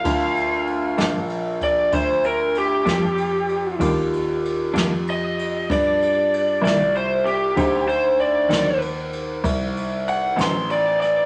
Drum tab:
RD |xxxxxxxxxxxx|xxxxxxxxxxxx|xxxxxxxxxxxx|
SD |---o-----o--|---o-----o--|---o-----o-o|
BD |o----oo-----|o-----o-----|o-----o-----|